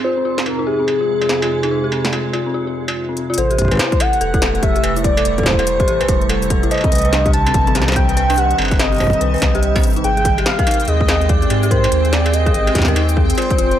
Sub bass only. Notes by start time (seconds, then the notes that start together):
3.38 A1
4.21 E1
4.84 E1
5.25 E1
5.88 A1
6.09 E1
6.92 C2
7.55 G1
7.75 C2
8.59 G1
9.21 C2
9.42 C2
9.84 G1
10.04 G#1
10.88 D#2
11.50 G#2
11.92 D#2
12.54 G#1
12.75 D#2
13.59 F1